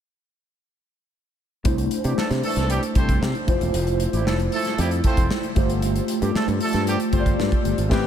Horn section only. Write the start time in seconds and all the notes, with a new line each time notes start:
2.04 E3 G3 D4 G4
2.17 E3 A3 D4 A4
2.44 E3 A3 D4 A4
2.70 E3 G3 D4 G4
2.96 A3 C4 G4 C5
4.14 G3 E4 G4
4.27 F3 A3 E4 A4
4.53 F3 A3 E4 A4
4.79 G3 E4 G4
5.05 A3 C4 F4 C5
6.22 D3 G3 C4 G4
6.35 F3 A3 D4 A4
6.61 F3 A3 D4 A4
6.88 D3 G3 C4 G4
7.13 A3 C4 F4 C5
7.91 E3 G3 C4 G4